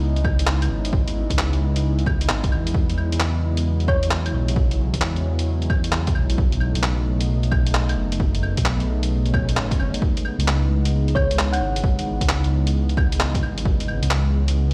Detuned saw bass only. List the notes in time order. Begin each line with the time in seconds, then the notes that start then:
Already playing: C#2
0.69 G#1
1.30 C#2
1.61 C#2
2.29 G#1
2.52 E2
3.11 E2
3.42 E2
4.33 B1
4.94 E2
5.24 E2
6.15 B1
6.75 B1
7.06 B1
7.96 F#1
8.57 B1
8.87 B1
9.56 A1
9.79 F#1
10.39 C#2
10.70 C#2
11.61 G#1
12.21 C#2
12.51 C#2
13.42 G#1
14.02 C#2
14.33 C#2